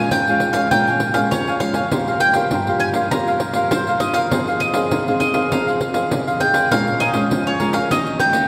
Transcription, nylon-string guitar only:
0.00 0.21 G#3 medium
0.00 0.21 C#4 medium
0.00 0.21 F4 medium
0.12 0.69 F2 medium
0.28 0.52 G#3 medium
0.28 0.53 C#4 medium
0.28 0.53 F4 medium
0.54 0.66 G#3 medium
0.54 0.66 C#4 medium
0.54 0.66 F4 medium
0.72 1.29 A#2 medium
0.72 1.00 G#3 soft
0.72 1.00 C#4 medium
0.72 1.01 F4 medium
1.15 1.56 G#3 medium
1.15 1.56 C#4 medium
1.15 1.56 F4 medium
1.32 1.89 F2 medium
1.61 1.79 G#3 medium
1.61 1.79 C#4 medium
1.61 1.79 F4 medium
1.92 2.49 C3 medium
1.92 2.20 A#3 medium
1.92 2.20 F4 medium
1.92 2.21 G4 medium
2.35 2.61 A#3 medium
2.35 2.61 F4 medium
2.35 2.61 G4 medium
2.52 3.09 G2 medium
2.68 2.93 A#3 medium
2.68 2.93 F4 medium
2.68 2.93 G4 medium
2.95 3.06 A#3 medium
2.95 3.06 F4 medium
2.95 3.06 G4 medium
3.12 3.69 C3 medium
3.12 3.40 A#3 medium
3.12 3.40 F4 soft
3.12 3.41 G4 medium
3.54 3.96 A#3 medium
3.54 3.96 F4 medium
3.54 3.96 G4 medium
3.71 4.29 G2 medium
4.00 4.26 A#3 medium
4.00 4.27 F4 medium
4.00 4.27 G4 medium
4.32 4.89 F3 medium
4.32 4.72 C4 medium
4.32 4.72 D#4 soft
4.32 4.72 G#4 medium
4.74 5.01 C4 medium
4.74 5.01 D#4 medium
4.74 5.01 G#4 medium
4.92 5.49 C3 medium
5.08 5.33 C4 medium
5.08 5.33 D#4 medium
5.08 5.33 G#4 medium
5.34 5.46 C4 medium
5.34 5.46 D#4 medium
5.34 5.46 G#4 medium
5.52 6.09 F3 medium
5.52 5.80 C4 soft
5.52 5.80 D#4 medium
5.52 5.80 G#4 medium
5.94 6.36 C4 medium
5.94 6.36 D#4 medium
5.94 6.36 G#4 medium
6.12 6.69 C3 medium
6.41 6.66 C4 soft
6.41 6.66 D#4 medium
6.41 6.67 G#4 medium
6.72 7.29 A#2 medium
6.72 7.00 G#3 medium
6.72 7.00 C#4 medium
6.72 7.00 F4 medium
7.14 7.56 G#3 medium
7.14 7.56 C#4 medium
7.14 7.56 F4 medium
7.32 7.88 F3 medium
7.60 7.86 G#3 soft
7.60 7.86 C#4 medium
7.60 7.86 F4 medium
7.92 8.48 D#3 medium
7.92 8.32 A#3 medium
7.92 8.32 C#4 medium
7.92 8.32 G4 medium
8.34 8.48 A#3 medium
8.34 8.48 C#4 medium
8.34 8.48 G4 medium

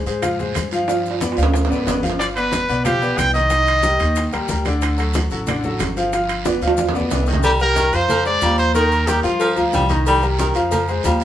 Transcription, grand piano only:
0.06 0.20 G#3 medium
0.06 0.20 G#4 medium
0.06 0.20 C5 medium
0.22 0.36 F3 medium
0.22 0.36 F4 medium
0.22 0.36 F5 medium
0.39 0.66 G#3 medium
0.39 0.66 G#4 medium
0.39 0.66 C5 medium
0.72 0.85 F3 medium
0.72 0.86 F4 medium
0.72 0.86 F5 medium
0.89 1.15 F3 medium
0.89 1.16 F4 medium
0.89 1.16 F5 medium
1.21 1.34 B3 medium
1.21 1.34 B4 medium
1.21 1.35 D5 medium
1.37 1.64 F3 medium
1.37 1.64 F4 medium
1.37 1.64 F5 medium
1.70 1.83 B3 medium
1.70 1.84 B4 medium
1.70 1.84 D5 medium
1.87 2.00 B3 medium
1.87 2.00 B4 medium
1.87 2.00 D5 medium
2.03 2.30 F3 medium
2.03 2.30 F4 medium
2.03 2.30 F5 medium
2.37 2.63 B3 medium
2.37 2.64 B4 medium
2.37 2.64 D5 medium
2.69 2.82 B3 medium
2.69 2.82 B4 medium
2.69 2.83 D5 medium
2.85 2.98 F3 medium
2.85 2.99 F4 medium
2.85 2.99 F5 medium
3.02 3.28 B3 medium
3.02 3.29 B4 medium
3.02 3.29 D5 medium
3.35 3.48 D#3 medium
3.35 3.48 D#4 medium
3.35 3.48 D#5 medium
3.51 3.78 D#3 medium
3.51 3.78 D#4 medium
3.51 3.78 D#5 medium
3.84 3.97 G3 medium
3.84 3.98 G4 medium
3.84 3.98 A#4 medium
4.00 4.27 D#3 medium
4.00 4.27 D#4 medium
4.00 4.27 D#5 medium
4.32 4.46 G3 medium
4.32 4.46 G4 medium
4.32 4.46 A#4 medium
4.49 4.62 G3 medium
4.49 4.62 G4 medium
4.49 4.63 A#4 medium
4.66 4.92 D3 medium
4.66 4.92 D4 medium
4.66 4.93 D5 medium
4.98 5.25 F#3 medium
4.98 5.25 F#4 medium
4.98 5.25 A4 medium
5.31 5.44 F#3 medium
5.31 5.45 F#4 medium
5.31 5.45 A4 medium
5.47 5.61 D3 medium
5.47 5.61 D4 medium
5.47 5.61 D5 medium
5.64 5.91 F#3 medium
5.64 5.91 F#4 medium
5.64 5.91 A4 medium
5.97 6.10 F3 medium
5.97 6.10 F4 medium
5.97 6.10 F5 medium
6.13 6.40 F3 medium
6.13 6.40 F4 medium
6.13 6.40 F5 medium
6.45 6.59 B3 medium
6.45 6.59 B4 medium
6.45 6.59 D5 medium
6.62 6.89 F3 medium
6.62 6.89 F4 medium
6.62 6.89 F5 medium
6.94 7.08 B3 medium
6.94 7.08 B4 medium
6.94 7.08 D5 medium
7.11 7.24 B3 medium
7.11 7.24 B4 medium
7.11 7.25 D5 medium
7.28 7.41 D#3 medium
7.28 7.41 D#4 medium
7.28 7.41 D#5 medium
7.61 7.87 G3 medium
7.61 7.88 G4 medium
7.61 7.88 A#4 medium
7.92 8.20 F3 medium
7.92 8.20 F4 medium
7.92 8.20 F5 medium
8.25 8.39 G#3 medium
8.25 8.39 G#4 medium
8.25 8.39 C5 medium
8.41 8.68 F3 medium
8.41 8.69 F4 medium
8.41 8.69 F5 medium
8.75 9.02 D#3 medium
8.75 9.02 D#4 medium
8.75 9.02 D#5 medium
9.07 9.21 G3 medium
9.07 9.21 G4 medium
9.07 9.21 A#4 medium
9.23 9.51 F3 medium
9.23 9.51 F4 medium
9.23 9.51 F5 medium
9.56 9.83 F3 medium
9.56 9.83 F4 medium
9.56 9.83 F5 medium
9.90 10.17 D#3 loud
9.90 10.17 D#4 medium
9.90 10.17 D#5 medium
10.22 10.49 G3 medium
10.22 10.50 G4 medium
10.22 10.50 A#4 medium
10.55 10.82 F3 medium
10.55 10.82 F4 medium
10.55 10.82 F5 medium
10.89 11.02 G#3 medium
10.89 11.02 G#4 medium
10.89 11.02 C5 medium
11.05 11.24 F3 medium
11.05 11.24 F4 medium
11.05 11.24 F5 medium

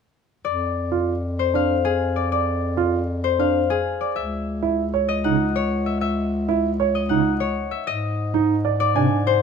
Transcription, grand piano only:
0.92 1.12 F4 medium
1.54 1.74 D4 medium
2.77 2.97 F4 medium
3.39 3.59 D4 medium
4.63 4.83 E4 medium
4.94 5.14 C#5 medium
5.25 5.45 D#4 medium
6.49 6.69 E4 medium
6.80 7.00 C#5 medium
7.11 7.31 D#4 medium
8.34 8.54 D#4 medium
8.65 8.85 D5 medium
8.95 9.16 D4 medium

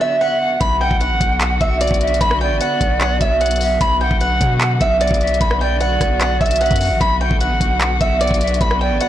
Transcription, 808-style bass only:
0.61 0.90 B1 loud
0.91 1.12 B1 loud
1.11 1.20 A1 loud
1.21 1.59 B1 loud
1.61 1.90 B1 loud
1.91 2.20 B1 loud
2.21 2.52 B1 loud
2.51 2.60 A1 loud
2.81 3.19 B1 loud
3.21 3.78 B1 loud
3.81 4.10 B1 loud
4.11 4.40 B1 loud
4.41 4.79 B2 loud
4.81 5.10 B1 loud
5.11 5.40 B1 loud
5.41 5.98 B1 loud
6.01 6.39 B1 loud
6.41 6.70 B1 loud
6.71 6.92 F#2 loud
6.91 7.00 A1 loud
7.01 7.30 B1 loud
7.31 7.52 B1 loud
7.51 7.60 A1 loud
7.61 7.99 B1 loud
8.01 8.30 B1 loud
8.31 8.60 B1 loud
8.61 8.92 B1 loud
8.91 9.00 A1 loud

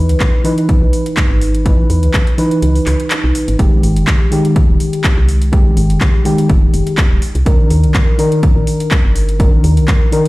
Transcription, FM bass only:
0.00 0.11 E2 medium
0.09 0.17 C#2 loud
0.82 0.90 B1 medium
1.30 1.85 G#1 medium
1.90 2.04 E2 medium
2.03 2.11 C#2 loud
2.62 2.80 C#2 medium
2.87 2.96 C#2 medium
3.24 3.32 B1 medium
3.48 3.56 G#1 medium
3.59 3.69 F1 medium
3.83 3.98 G#1 medium
3.96 4.04 F1 loud
4.69 4.77 D#1 medium
5.17 5.72 C2 medium
5.77 5.91 G#1 medium
5.90 5.98 F1 loud
6.50 6.67 F1 medium
6.74 6.83 F1 medium
7.11 7.19 D#1 medium
7.35 7.43 C2 medium
7.46 7.56 C2 loud
7.70 7.85 D#2 medium
7.84 7.92 C2 loud
8.56 8.64 A#1 medium
9.04 9.59 G1 medium
9.64 9.79 D#2 medium
9.77 9.85 C2 loud

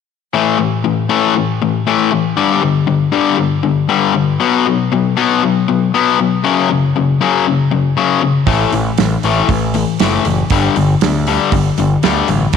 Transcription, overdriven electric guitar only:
0.34 0.57 A2 medium
0.34 0.58 E3 medium
0.34 0.58 A3 medium
0.58 0.81 A2 medium
0.58 0.82 E3 medium
0.84 1.07 A2 medium
0.84 1.07 E3 medium
1.09 1.33 A2 medium
1.09 1.34 E3 medium
1.09 1.34 A3 medium
1.36 1.59 A2 medium
1.36 1.59 E3 medium
1.62 1.84 A2 medium
1.62 1.84 E3 medium
1.87 2.10 A2 medium
1.87 2.10 E3 medium
1.87 2.11 A3 medium
2.12 2.35 A2 medium
2.12 2.35 E3 medium
2.37 2.61 G2 medium
2.37 2.61 D3 medium
2.37 2.61 G3 medium
2.62 2.85 G2 medium
2.62 2.85 D3 medium
2.87 3.10 G2 medium
2.87 3.10 D3 medium
3.12 3.36 G2 medium
3.12 3.37 D3 medium
3.12 3.37 G3 medium
3.38 3.61 G2 medium
3.38 3.61 D3 medium
3.63 3.86 G2 medium
3.63 3.86 D3 medium
3.89 4.13 G2 medium
3.89 4.13 D3 medium
3.89 4.13 G3 medium
4.15 4.38 G2 medium
4.15 4.38 D3 medium
4.40 4.64 B2 medium
4.40 4.64 F#3 medium
4.40 4.64 B3 medium
4.66 4.89 B2 medium
4.66 4.89 F#3 medium
4.92 5.14 B2 medium
4.92 5.15 F#3 medium
5.17 5.41 B2 medium
5.17 5.41 F#3 medium
5.17 5.41 B3 medium
5.43 5.65 B2 medium
5.43 5.66 F#3 medium
5.68 5.91 B2 medium
5.68 5.91 F#3 medium
5.94 6.17 B2 medium
5.94 6.17 F#3 medium
5.94 6.18 B3 medium
6.19 6.41 B2 soft
6.19 6.42 F#3 medium
6.44 6.68 F#2 medium
6.44 6.68 C#3 medium
6.44 6.68 F#3 medium
6.70 6.92 F#2 medium
6.70 6.93 C#3 medium
6.96 7.18 F#2 medium
6.96 7.18 C#3 medium
7.21 7.44 F#2 medium
7.21 7.45 C#3 medium
7.21 7.45 F#3 medium
7.47 7.69 F#2 medium
7.47 7.70 C#3 medium
7.71 7.94 F#2 soft
7.71 7.94 C#3 medium
7.97 8.20 F#2 medium
7.97 8.21 C#3 medium
7.97 8.21 F#3 medium
8.22 8.45 F#2 medium
8.22 8.45 C#3 medium
8.47 8.71 A2 medium
8.47 8.71 E3 medium
8.47 8.71 A3 medium
8.73 8.96 A2 soft
8.73 8.96 E3 medium
8.98 9.21 A2 medium
8.98 9.21 E3 medium
9.24 9.48 A2 medium
9.24 9.48 E3 medium
9.24 9.48 A3 medium
9.49 9.72 A2 medium
9.49 9.72 E3 medium
9.75 9.97 A2 medium
9.75 9.98 E3 medium
10.00 10.24 A2 medium
10.00 10.24 E3 medium
10.00 10.24 A3 medium
10.26 10.48 A2 medium
10.26 10.49 E3 medium
10.51 10.75 G2 medium
10.51 10.75 D3 medium
10.51 10.75 G3 medium
10.76 10.99 G2 soft
10.76 10.99 D3 medium
11.03 11.25 G2 medium
11.03 11.25 D3 medium
11.28 11.51 G2 medium
11.28 11.51 D3 medium
11.28 11.51 G3 medium
11.53 11.75 G2 medium
11.53 11.76 D3 medium
11.78 12.01 G2 medium
11.78 12.01 D3 medium
12.03 12.27 G2 medium
12.03 12.27 D3 medium
12.03 12.28 G3 medium
12.29 12.51 G2 medium
12.29 12.52 D3 medium

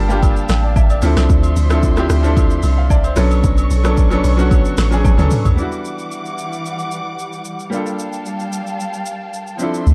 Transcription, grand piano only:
0.00 0.09 G3 medium
0.00 0.09 A#3 medium
0.00 0.10 D4 medium
0.00 0.11 F4 medium
0.00 0.12 G4 loud
0.00 1.05 A4 loud
0.09 0.52 G3 medium
0.09 0.52 A#3 medium
0.09 0.52 D4 medium
0.09 0.53 F4 medium
0.09 0.53 G4 loud
0.64 0.76 D5 medium
0.76 0.89 E5 medium
0.90 1.16 D5 medium
1.02 1.56 F3 loud
1.02 1.56 C4 medium
1.02 1.57 D4 medium
1.02 1.57 E4 medium
1.02 1.57 A4 loud
1.69 1.91 F3 medium
1.69 1.91 C4 medium
1.69 1.92 D4 medium
1.69 1.92 E4 medium
1.69 1.92 A4 medium
1.96 2.18 F3 medium
1.96 2.18 C4 medium
1.96 2.19 D4 medium
1.96 2.19 E4 medium
1.96 2.19 G4 loud
2.23 2.66 F3 medium
2.23 2.66 C4 medium
2.23 2.66 D4 medium
2.23 2.67 E4 medium
2.23 2.67 A4 loud
2.78 2.90 F5 medium
2.90 3.04 D5 medium
3.04 3.30 C5 medium
3.16 3.70 F#3 loud
3.16 3.70 B3 medium
3.16 3.71 C#4 medium
3.16 3.71 D4 medium
3.16 3.71 A4 loud
3.83 4.05 F#3 medium
3.83 4.06 B3 medium
3.83 4.06 C#4 medium
3.83 4.06 D4 medium
3.83 4.07 A4 loud
4.10 4.32 F#3 medium
4.10 4.32 B3 medium
4.10 4.33 C#4 medium
4.10 4.33 D4 medium
4.10 4.34 A4 loud
4.37 4.80 F#3 medium
4.37 4.80 B3 medium
4.37 4.81 C#4 medium
4.37 4.81 D4 medium
4.37 4.81 F#4 loud
4.91 5.12 F#3 medium
4.91 5.13 B3 medium
4.91 5.13 C#4 medium
4.91 5.14 D4 medium
4.91 5.14 G#4 loud
5.17 5.50 F#3 medium
5.17 5.50 B3 medium
5.17 5.51 C#4 medium
5.17 5.51 D4 medium
5.17 5.51 A4 loud
5.56 7.67 G3 medium
5.56 7.68 B3 medium
5.56 7.69 D4 medium
5.60 7.69 E4 medium
5.60 7.70 F#4 medium
7.70 9.55 G3 medium
7.70 9.56 A#3 medium
7.70 9.56 D4 medium
7.74 9.57 F4 medium
7.74 9.58 A4 medium
9.57 9.94 F3 medium
9.57 9.94 C4 medium
9.57 9.94 D4 medium
9.62 9.94 E4 medium
9.62 9.94 A4 medium

